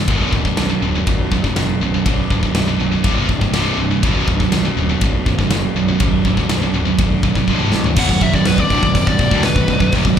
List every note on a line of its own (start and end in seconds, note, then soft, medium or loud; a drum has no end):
0.08 0.24 B0 loud
0.08 0.32 B1 medium
0.08 0.32 F#2 loud
0.08 0.32 B2 loud
0.08 2.05 F#3 loud
0.08 2.05 D4 medium
0.08 kick loud
0.08 ride bell medium
0.33 0.49 D1 medium
0.33 0.44 B1 medium
0.33 0.44 F#2 medium
0.33 kick medium
0.45 0.57 B1 medium
0.45 0.57 F#2 medium
0.45 kick medium
0.57 0.73 B0 medium
0.57 0.69 B1 medium
0.57 0.69 F#2 medium
0.57 snare loud
0.57 ride bell medium
0.70 0.81 B1 medium
0.70 0.81 F#2 medium
0.82 0.98 D1 medium
0.82 0.94 B1 medium
0.82 0.94 F#2 medium
0.95 1.06 B1 medium
0.95 1.06 F#2 medium
1.07 1.23 B0 medium
1.07 1.29 B1 medium
1.07 1.30 F#2 medium
1.07 kick loud
1.07 ride bell medium
1.32 1.48 B0 medium
1.32 1.44 B1 medium
1.32 1.43 F#2 medium
1.32 kick medium
1.44 1.56 B1 medium
1.44 1.57 F#2 medium
1.44 kick medium
1.56 1.72 F#1 medium
1.56 1.79 B1 medium
1.56 1.79 F#2 medium
1.56 snare loud
1.56 ride bell medium
1.81 1.97 B0 medium
1.81 1.93 B1 medium
1.81 1.93 F#2 medium
1.94 2.06 B1 medium
1.94 2.06 F#2 medium
2.06 2.22 B0 medium
2.06 2.29 B1 medium
2.06 2.29 F#2 medium
2.06 3.03 B2 loud
2.06 3.04 F#3 medium
2.06 3.04 D4 loud
2.06 kick loud
2.06 ride bell medium
2.30 2.46 D1 medium
2.30 2.42 B1 medium
2.30 2.42 F#2 medium
2.30 kick medium
2.43 2.54 B1 medium
2.43 2.55 F#2 medium
2.43 kick medium
2.55 2.71 B0 medium
2.55 2.67 B1 medium
2.55 2.67 F#2 medium
2.55 snare loud
2.55 ride bell medium
2.68 2.79 B1 medium
2.68 2.78 F#2 medium
2.79 2.95 B0 medium
2.79 2.90 B1 medium
2.79 2.90 F#2 medium
2.91 3.03 B1 medium
2.91 3.03 F#2 medium
3.03 3.20 C1 medium
3.03 3.27 C2 loud
3.03 3.27 G2 loud
3.03 3.27 C3 loud
3.03 kick loud
3.03 ride bell medium
3.28 3.45 C1 medium
3.28 3.41 C2 medium
3.28 3.40 G2 medium
3.28 kick medium
3.41 3.52 C2 medium
3.41 3.53 G2 medium
3.41 kick medium
3.53 3.69 C1 medium
3.53 3.77 C2 medium
3.53 3.77 G2 medium
3.53 3.77 C3 medium
3.53 snare loud
3.53 ride bell medium
3.78 3.94 C1 medium
3.78 3.89 C2 medium
3.78 3.89 G2 medium
3.90 4.02 C2 medium
3.90 4.03 G2 medium
4.02 4.19 B0 loud
4.02 4.26 B1 medium
4.02 4.26 F#2 medium
4.02 4.26 B2 medium
4.02 6.00 F#3 loud
4.02 6.00 D4 loud
4.02 kick loud
4.02 ride bell medium
4.27 4.43 D1 medium
4.27 4.40 B1 medium
4.27 4.40 F#2 medium
4.27 kick medium
4.40 4.52 B1 medium
4.40 4.52 F#2 medium
4.40 kick medium
4.52 4.68 B0 medium
4.52 4.64 B1 medium
4.52 4.64 F#2 medium
4.52 snare medium
4.52 ride bell medium
4.65 4.77 B1 medium
4.65 4.77 F#2 medium
4.77 4.93 D1 medium
4.77 4.89 B1 medium
4.77 4.89 F#2 medium
4.90 5.01 B1 medium
4.90 5.01 F#2 medium
5.01 5.17 B0 medium
5.01 5.24 B1 medium
5.01 5.24 F#2 medium
5.01 kick loud
5.01 ride bell medium
5.26 5.42 B0 medium
5.26 5.39 B1 medium
5.26 5.38 F#2 medium
5.26 kick loud
5.39 5.51 B1 medium
5.39 5.51 F#2 medium
5.39 kick medium
5.50 5.66 F#1 medium
5.50 5.74 B1 medium
5.50 5.74 F#2 medium
5.50 snare loud
5.50 ride bell medium
5.75 5.91 B0 medium
5.75 5.88 B1 medium
5.75 5.88 F#2 medium
5.89 6.00 B1 medium
5.89 6.00 F#2 medium
6.00 6.16 B0 loud
6.00 6.23 B1 medium
6.00 6.23 F#2 loud
6.00 7.47 B2 loud
6.00 7.47 F#3 loud
6.00 7.47 D4 loud
6.00 kick loud
6.00 ride bell medium
6.25 6.41 D1 medium
6.25 6.38 B1 medium
6.25 6.38 F#2 medium
6.25 kick medium
6.37 6.49 B1 medium
6.37 6.50 F#2 medium
6.37 kick medium
6.49 6.65 B0 medium
6.49 6.62 B1 medium
6.49 6.61 F#2 medium
6.49 snare loud
6.49 ride bell medium
6.63 6.75 B1 medium
6.63 6.75 F#2 medium
6.74 6.90 D1 medium
6.74 6.86 B1 medium
6.74 6.86 F#2 medium
6.87 6.99 B1 medium
6.87 6.99 F#2 medium
6.98 7.14 B0 medium
6.98 7.22 B1 medium
6.98 7.22 F#2 medium
6.98 kick loud
6.98 ride bell medium
7.23 7.39 B0 medium
7.23 7.36 B1 medium
7.23 7.36 F#2 medium
7.23 kick medium
7.35 7.49 B1 medium
7.35 7.48 F#2 medium
7.35 kick medium
7.48 7.63 C1 medium
7.48 7.72 C2 medium
7.48 7.72 G2 medium
7.48 7.72 C3 loud
7.48 kick medium
7.60 mid tom medium
7.72 7.88 A1 medium
7.72 7.85 C2 medium
7.72 7.84 G2 medium
7.72 snare medium
7.84 7.97 C2 medium
7.84 7.97 G2 medium
7.84 floor tom medium
7.96 8.08 B0 loud
7.96 8.08 B1 loud
7.96 8.09 F#2 loud
7.96 10.19 D3 medium
7.96 10.19 B3 medium
7.96 10.19 F#4 medium
7.96 10.19 D5 medium
7.96 8.22 F#5 medium
7.96 kick loud
7.96 crash loud
7.96 crash medium
8.09 8.20 B0 medium
8.09 8.21 B1 medium
8.09 8.21 F#2 medium
8.09 kick medium
8.21 8.33 B0 medium
8.21 8.32 B1 medium
8.21 8.33 F#2 medium
8.21 8.34 E5 medium
8.21 kick medium
8.21 crash medium
8.33 8.45 B0 medium
8.33 8.45 B1 medium
8.33 8.45 F#2 medium
8.33 8.47 D5 medium
8.33 kick medium
8.46 8.57 B0 medium
8.46 8.58 B1 medium
8.46 8.58 F#2 medium
8.46 8.60 B4 medium
8.46 snare loud
8.46 crash medium
8.58 8.70 B0 medium
8.58 8.71 B1 medium
8.58 8.71 F#2 medium
8.58 9.06 D5 loud
8.58 kick medium
8.70 8.82 C1 loud
8.70 8.82 C2 medium
8.70 8.82 G2 medium
8.70 kick medium
8.70 crash medium
8.83 8.94 B0 medium
8.83 8.94 B1 medium
8.83 8.94 F#2 medium
8.83 kick medium
8.95 9.06 B0 medium
8.95 9.05 B1 medium
8.95 9.06 F#2 medium
8.95 kick loud
8.95 crash medium
9.07 9.18 B0 medium
9.07 9.18 B1 medium
9.07 9.18 F#2 medium
9.07 9.43 D5 medium
9.07 kick medium
9.19 9.31 B0 medium
9.19 9.30 B1 medium
9.19 9.31 F#2 medium
9.19 kick medium
9.19 crash medium
9.31 9.43 D1 medium
9.31 9.42 D2 loud
9.31 9.43 A2 medium
9.31 kick medium
9.43 9.55 B0 medium
9.43 9.53 B1 medium
9.43 9.54 F#2 medium
9.43 9.92 B4 loud
9.43 snare loud
9.43 crash medium
9.55 9.67 B0 medium
9.55 9.66 B1 medium
9.55 9.67 F#2 medium
9.55 kick medium
9.67 9.80 B0 medium
9.67 9.79 B1 medium
9.67 9.79 F#2 medium
9.67 kick medium
9.67 crash medium
9.80 9.92 B0 medium
9.80 9.92 B1 medium
9.80 9.92 F#2 medium
9.80 kick medium
9.92 10.04 F1 loud
9.92 10.04 F2 medium
9.92 10.04 C3 loud
9.92 kick loud
9.92 crash medium
10.04 10.17 B0 medium
10.04 10.15 B1 medium
10.04 10.15 F#2 medium
10.04 kick medium